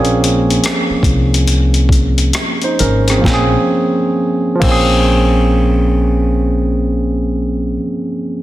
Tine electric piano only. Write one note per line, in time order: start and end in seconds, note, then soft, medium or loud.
0.00 3.17 F3 medium
0.00 3.20 A#3 medium
0.00 1.87 C4 medium
0.00 1.88 C#4 medium
0.00 1.89 G#4 medium
2.64 2.79 D#4 soft
2.64 2.79 C5 medium
2.80 3.07 C#4 soft
2.80 3.07 A#4 medium
3.09 3.24 C4 soft
3.09 3.32 G#4 soft
3.18 3.51 F3 medium
3.18 3.53 A#3 medium
3.25 3.55 C4 medium
3.29 3.57 C#4 medium
3.34 3.60 G#4 medium
4.55 7.70 F3 medium
4.60 7.74 A#3 medium
4.60 7.78 C4 medium
4.68 7.82 C#4 medium
4.68 7.86 G#4 medium